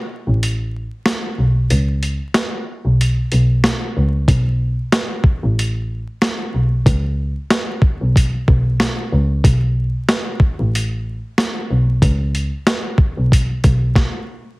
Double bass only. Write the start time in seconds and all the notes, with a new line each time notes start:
0.27 A1
1.38 B1
1.70 C#2
2.85 B1
3.32 B1
3.96 C#2
4.28 B1
5.43 A1
6.54 B1
6.86 C#2
8.01 B1
8.48 B1
9.12 C#2
9.44 B1
10.59 A1
11.71 B1
12.02 C#2
13.17 B1
13.64 B1